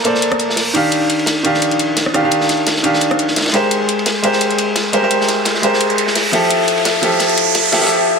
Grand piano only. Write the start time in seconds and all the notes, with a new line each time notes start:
0.04 A#3 A4 C5 D5
0.73 D#3 D4 G4 F5
1.43 D#3 D4 G4 F5
2.14 D#3 D4 G4 F5
2.22 D#3 D4 G4 F5
2.83 D#3 D4 G4 F5
3.52 G#3 G4 A#4 C5
4.22 G#3 G4 A#4 C5
4.92 G#3 G4 A#4 C5
5.01 G#3 G4 A#4 C5
5.62 G#3 G4 A#4 C5
6.32 F3 E4 G4 A4
7.01 F3 E4 G4 A4
7.72 F3 E4 G4 A4
7.80 F3 E4 G4 A4